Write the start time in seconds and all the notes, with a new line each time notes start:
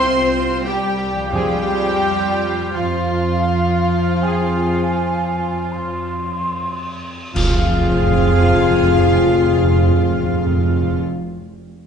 Already playing: C3 A#3 C4 G4 C5 E5 C6
0.04 C2 F4
0.65 G3 G4 G5
1.15 F3
1.19 G#3 F4
1.28 G3 G4 F5
1.32 F2 F3 G3 C4 F4 G4 G#4 G5
2.73 F2 F3 F4 F5
4.21 F2 F3 C4 G#4 G#5
5.72 F2 C6
7.34 F1 F2 F3 C4 F4 G#4 F5, concert bass drum, crash
7.41 F2 G#3
7.48 F2 F4
7.55 F2 F5
7.65 F2
7.72 F2
7.80 F2
7.87 F2
7.95 F2
8.02 F2
8.09 F2
8.17 F2
8.24 F2
8.32 F2
8.38 F2
8.46 F2
8.54 F2
8.60 F2
8.68 F2
8.75 F2
8.82 F2
8.90 F2
8.97 F2
9.05 F2
9.12 F2
9.19 F2
9.27 F2
9.35 F2
9.42 F2
9.49 F2
9.56 F2
9.64 F2
9.71 F2
9.78 F2
9.85 F2
9.93 F2
10.01 F2
10.08 F2
10.23 F2
10.31 F2
10.39 F2
10.46 F2
10.53 F2
10.60 F2
10.68 F2
10.75 F2
10.82 F2
10.89 F2
10.97 F2